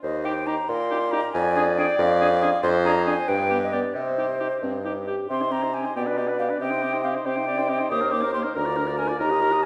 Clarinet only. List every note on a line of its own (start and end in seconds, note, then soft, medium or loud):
0.03 0.71 C5 loud
0.69 1.36 A#4 medium
1.35 2.63 D5 loud
2.63 3.30 C5 loud
3.28 3.94 B4 loud
3.95 4.94 D#5 medium
5.96 6.57 D5 medium
6.61 7.27 D#5 loud
7.25 7.47 C5 medium
7.47 7.71 D5 medium
7.69 7.92 D#5 medium
7.90 8.57 C5 loud
8.56 9.19 A#4 medium
9.20 9.65 G4 medium